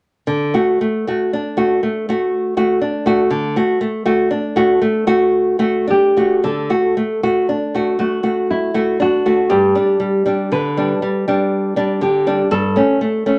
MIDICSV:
0, 0, Header, 1, 3, 480
1, 0, Start_track
1, 0, Key_signature, 2, "major"
1, 0, Tempo, 1048951
1, 127, Time_signature, 3, 2, 24, 8
1, 604, Tempo, 993377
1, 2044, Tempo, 1030928
1, 2524, Tempo, 1109057
1, 3004, Tempo, 1045296
1, 3484, Tempo, 1010101
1, 5404, Tempo, 988468
1, 6308, End_track
2, 0, Start_track
2, 0, Title_t, "Nylon-string guitar"
2, 0, Program_c, 0, 24
2, 2772, Note_on_c, 0, 67, 47
2, 2992, Note_off_c, 0, 67, 0
2, 3005, Note_on_c, 0, 69, 40
2, 3706, Note_off_c, 0, 69, 0
2, 3727, Note_on_c, 0, 66, 45
2, 3948, Note_off_c, 0, 66, 0
2, 3969, Note_on_c, 0, 64, 44
2, 4188, Note_off_c, 0, 64, 0
2, 4213, Note_on_c, 0, 66, 47
2, 4428, Note_off_c, 0, 66, 0
2, 4439, Note_on_c, 0, 67, 44
2, 4906, Note_off_c, 0, 67, 0
2, 4928, Note_on_c, 0, 71, 50
2, 5626, Note_off_c, 0, 71, 0
2, 5646, Note_on_c, 0, 67, 46
2, 5868, Note_off_c, 0, 67, 0
2, 5885, Note_on_c, 0, 69, 50
2, 6308, Note_off_c, 0, 69, 0
2, 6308, End_track
3, 0, Start_track
3, 0, Title_t, "Nylon-string guitar"
3, 0, Program_c, 1, 24
3, 124, Note_on_c, 1, 50, 34
3, 244, Note_off_c, 1, 50, 0
3, 247, Note_on_c, 1, 57, 28
3, 250, Note_on_c, 1, 66, 31
3, 357, Note_off_c, 1, 57, 0
3, 357, Note_off_c, 1, 66, 0
3, 370, Note_on_c, 1, 57, 33
3, 487, Note_off_c, 1, 57, 0
3, 491, Note_on_c, 1, 57, 27
3, 495, Note_on_c, 1, 66, 33
3, 595, Note_off_c, 1, 57, 0
3, 596, Note_off_c, 1, 66, 0
3, 610, Note_on_c, 1, 62, 31
3, 724, Note_on_c, 1, 57, 29
3, 727, Note_on_c, 1, 66, 31
3, 801, Note_off_c, 1, 62, 0
3, 833, Note_off_c, 1, 57, 0
3, 835, Note_off_c, 1, 66, 0
3, 850, Note_on_c, 1, 57, 31
3, 969, Note_off_c, 1, 57, 0
3, 975, Note_on_c, 1, 57, 32
3, 980, Note_on_c, 1, 66, 36
3, 1190, Note_off_c, 1, 57, 0
3, 1193, Note_off_c, 1, 66, 0
3, 1207, Note_on_c, 1, 57, 34
3, 1209, Note_on_c, 1, 66, 35
3, 1314, Note_off_c, 1, 57, 0
3, 1314, Note_off_c, 1, 66, 0
3, 1326, Note_on_c, 1, 62, 37
3, 1444, Note_on_c, 1, 57, 33
3, 1449, Note_on_c, 1, 66, 35
3, 1517, Note_off_c, 1, 62, 0
3, 1552, Note_off_c, 1, 57, 0
3, 1555, Note_off_c, 1, 66, 0
3, 1563, Note_on_c, 1, 50, 44
3, 1680, Note_off_c, 1, 50, 0
3, 1687, Note_on_c, 1, 57, 35
3, 1690, Note_on_c, 1, 66, 37
3, 1794, Note_off_c, 1, 57, 0
3, 1795, Note_off_c, 1, 66, 0
3, 1806, Note_on_c, 1, 57, 38
3, 1920, Note_off_c, 1, 57, 0
3, 1926, Note_on_c, 1, 57, 35
3, 1928, Note_on_c, 1, 66, 39
3, 2034, Note_off_c, 1, 57, 0
3, 2035, Note_off_c, 1, 66, 0
3, 2047, Note_on_c, 1, 62, 37
3, 2165, Note_on_c, 1, 57, 34
3, 2169, Note_on_c, 1, 66, 39
3, 2235, Note_off_c, 1, 62, 0
3, 2271, Note_off_c, 1, 57, 0
3, 2273, Note_off_c, 1, 66, 0
3, 2284, Note_on_c, 1, 57, 39
3, 2397, Note_off_c, 1, 57, 0
3, 2402, Note_on_c, 1, 57, 35
3, 2404, Note_on_c, 1, 66, 42
3, 2626, Note_off_c, 1, 57, 0
3, 2627, Note_off_c, 1, 66, 0
3, 2636, Note_on_c, 1, 57, 33
3, 2639, Note_on_c, 1, 66, 37
3, 2750, Note_off_c, 1, 57, 0
3, 2750, Note_off_c, 1, 66, 0
3, 2759, Note_on_c, 1, 62, 32
3, 2886, Note_on_c, 1, 57, 29
3, 2889, Note_on_c, 1, 66, 31
3, 2956, Note_off_c, 1, 62, 0
3, 2992, Note_off_c, 1, 57, 0
3, 2994, Note_off_c, 1, 66, 0
3, 3003, Note_on_c, 1, 50, 34
3, 3122, Note_off_c, 1, 50, 0
3, 3122, Note_on_c, 1, 57, 27
3, 3125, Note_on_c, 1, 66, 29
3, 3233, Note_off_c, 1, 57, 0
3, 3235, Note_off_c, 1, 66, 0
3, 3247, Note_on_c, 1, 57, 31
3, 3363, Note_off_c, 1, 57, 0
3, 3368, Note_on_c, 1, 57, 26
3, 3368, Note_on_c, 1, 66, 29
3, 3474, Note_off_c, 1, 57, 0
3, 3474, Note_off_c, 1, 66, 0
3, 3486, Note_on_c, 1, 62, 28
3, 3607, Note_on_c, 1, 57, 29
3, 3611, Note_on_c, 1, 66, 30
3, 3677, Note_off_c, 1, 62, 0
3, 3714, Note_off_c, 1, 57, 0
3, 3716, Note_off_c, 1, 66, 0
3, 3723, Note_on_c, 1, 57, 30
3, 3833, Note_off_c, 1, 57, 0
3, 3839, Note_on_c, 1, 57, 28
3, 3841, Note_on_c, 1, 66, 30
3, 4062, Note_off_c, 1, 57, 0
3, 4063, Note_off_c, 1, 66, 0
3, 4082, Note_on_c, 1, 57, 29
3, 4084, Note_on_c, 1, 66, 32
3, 4190, Note_off_c, 1, 57, 0
3, 4190, Note_off_c, 1, 66, 0
3, 4203, Note_on_c, 1, 62, 29
3, 4326, Note_on_c, 1, 57, 28
3, 4328, Note_on_c, 1, 66, 29
3, 4392, Note_off_c, 1, 62, 0
3, 4430, Note_off_c, 1, 57, 0
3, 4432, Note_off_c, 1, 66, 0
3, 4440, Note_on_c, 1, 43, 38
3, 4556, Note_off_c, 1, 43, 0
3, 4562, Note_on_c, 1, 55, 29
3, 4564, Note_on_c, 1, 62, 29
3, 4670, Note_off_c, 1, 55, 0
3, 4670, Note_off_c, 1, 62, 0
3, 4677, Note_on_c, 1, 55, 31
3, 4795, Note_off_c, 1, 55, 0
3, 4800, Note_on_c, 1, 55, 29
3, 4804, Note_on_c, 1, 62, 31
3, 4912, Note_off_c, 1, 55, 0
3, 4914, Note_off_c, 1, 62, 0
3, 4924, Note_on_c, 1, 50, 30
3, 5046, Note_on_c, 1, 55, 31
3, 5049, Note_on_c, 1, 62, 31
3, 5120, Note_off_c, 1, 50, 0
3, 5156, Note_off_c, 1, 55, 0
3, 5156, Note_off_c, 1, 62, 0
3, 5165, Note_on_c, 1, 55, 31
3, 5280, Note_off_c, 1, 55, 0
3, 5286, Note_on_c, 1, 55, 31
3, 5289, Note_on_c, 1, 62, 34
3, 5505, Note_off_c, 1, 55, 0
3, 5506, Note_off_c, 1, 62, 0
3, 5519, Note_on_c, 1, 55, 30
3, 5522, Note_on_c, 1, 62, 35
3, 5629, Note_off_c, 1, 55, 0
3, 5631, Note_off_c, 1, 62, 0
3, 5640, Note_on_c, 1, 50, 32
3, 5764, Note_on_c, 1, 55, 30
3, 5766, Note_on_c, 1, 62, 32
3, 5834, Note_off_c, 1, 50, 0
3, 5872, Note_off_c, 1, 55, 0
3, 5873, Note_off_c, 1, 62, 0
3, 5882, Note_on_c, 1, 43, 38
3, 6000, Note_off_c, 1, 43, 0
3, 6003, Note_on_c, 1, 57, 29
3, 6008, Note_on_c, 1, 61, 33
3, 6112, Note_off_c, 1, 57, 0
3, 6115, Note_off_c, 1, 61, 0
3, 6125, Note_on_c, 1, 57, 33
3, 6241, Note_off_c, 1, 57, 0
3, 6247, Note_on_c, 1, 57, 31
3, 6249, Note_on_c, 1, 61, 31
3, 6308, Note_off_c, 1, 57, 0
3, 6308, Note_off_c, 1, 61, 0
3, 6308, End_track
0, 0, End_of_file